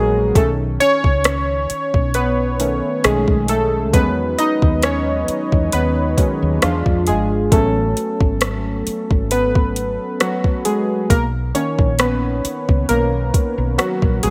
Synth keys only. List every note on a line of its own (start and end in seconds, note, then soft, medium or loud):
0.00 0.37 F#3 medium
0.00 0.37 G#3 medium
0.00 0.37 A#3 medium
0.00 0.37 F#4 medium
0.00 0.37 G#4 medium
0.00 0.37 A#4 loud
0.36 1.66 D#3 medium
0.36 0.51 A3 medium
0.36 0.81 C#4 medium
0.36 0.50 A4 medium
0.80 2.11 C#4 medium
0.80 2.19 C#5 loud
2.15 3.01 B3 medium
2.15 3.07 B4 loud
2.60 3.00 D#3 medium
2.60 3.00 A3 soft
2.60 3.01 C#4 medium
3.04 3.65 D#3 medium
3.04 3.46 G#3 medium
3.04 3.49 A3 medium
3.04 3.66 C#4 medium
3.04 3.46 G#4 medium
3.49 3.91 A3 medium
3.49 3.95 A4 medium
3.94 5.24 D#3 medium
3.94 5.24 F#3 medium
3.94 5.24 G#3 soft
3.94 4.36 B3 medium
3.94 4.84 C#4 medium
3.94 4.40 B4 loud
4.38 4.81 D#4 medium
4.38 4.84 D#5 loud
4.83 5.69 C#4 medium
4.83 5.69 C#5 loud
5.73 6.59 B3 medium
5.73 6.65 B4 medium
6.18 6.58 D#3 medium
6.18 6.58 F#3 soft
6.18 6.59 G#3 soft
6.18 6.59 C#4 medium
6.62 6.64 F3 medium
6.62 7.05 F3 medium
6.62 7.08 G#3 medium
6.62 7.49 D4 medium
6.62 7.08 F4 medium
7.07 7.50 G#3 medium
7.07 7.49 G#4 medium
7.52 8.82 F#3 medium
7.52 9.28 A3 medium
7.52 8.83 B3 soft
7.52 8.83 C#4 medium
7.52 9.37 A4 medium
9.31 10.17 B3 medium
9.31 10.17 B4 medium
10.20 10.63 F#3 medium
10.20 10.67 F#4 medium
10.65 11.07 G#3 medium
10.65 11.07 G#4 medium
11.10 11.25 A#3 medium
11.10 11.24 A#4 medium
11.55 12.16 D#3 medium
11.55 12.16 A#3 soft
11.55 11.97 C#4 medium
11.55 12.01 C#5 medium
11.99 12.86 B3 medium
11.99 12.92 B4 medium
12.89 13.75 A#3 medium
12.89 13.81 A#4 loud
13.78 14.21 F#3 medium
13.78 14.24 F#4 medium
14.23 14.30 G#3 medium
14.23 14.30 G#4 medium